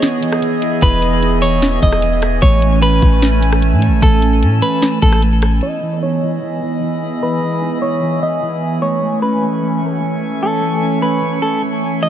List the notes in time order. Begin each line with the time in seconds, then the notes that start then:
Already playing: E3 B3 D#4 E4 G#4 C#5 D#5 G#5
0.02 E3, snare, closed hi-hat
0.22 E3, closed hi-hat
0.32 cross-stick
0.42 E3, closed hi-hat
0.62 E4, closed hi-hat
0.82 E1 E3 B4, kick, closed hi-hat
1.02 E3, closed hi-hat
1.22 D#4, closed hi-hat
1.42 E3 C#5, open hi-hat
1.62 E3, snare, closed hi-hat
1.82 E1 E3 D#5, kick, closed hi-hat
1.92 cross-stick
2.02 E3, closed hi-hat
2.22 E5, cross-stick, closed hi-hat
2.42 A1 A3 C#4 A4 C#5 G#5, kick, closed hi-hat
2.62 A3, closed hi-hat
2.82 C#4 B4, closed hi-hat
3.02 A1 A3, kick, closed hi-hat
3.22 A3, snare, closed hi-hat
3.42 A3, closed hi-hat
3.52 cross-stick
3.62 A3, closed hi-hat
3.72 A2
3.82 C#5, closed hi-hat
3.87 A1
4.02 A1 A3 A4, kick, closed hi-hat
4.22 A3, closed hi-hat
4.42 A2 C#4, closed hi-hat
4.62 A3 B4, closed hi-hat
4.82 A3, snare, closed hi-hat
5.02 A1 A3 A4, kick, closed hi-hat
5.13 cross-stick
5.22 A3, closed hi-hat
5.42 C#5, cross-stick, closed hi-hat
5.62 E3 G#3 B3 E4 D#5 G#5
5.83 E3
6.03 D#4 C#5
6.23 E3
6.42 E3
6.62 E3
6.82 E3
7.02 E4
7.22 E3 B4
7.43 E3
7.62 D#4
7.82 E3 C#5
8.02 E3
8.22 E3 D#5
8.43 E3
8.62 E5
8.82 A3 C#4 C#5 G#5
9.03 A3
9.22 C#4 B4
9.43 A3
9.63 A3
9.82 A3
10.03 A3
10.22 C#5
10.43 A3 A4
10.62 A3
10.82 C#4
11.02 A3 B4
11.22 A3
11.42 A3 A4
11.62 A3
11.83 C#5
12.02 E3 B3 D#5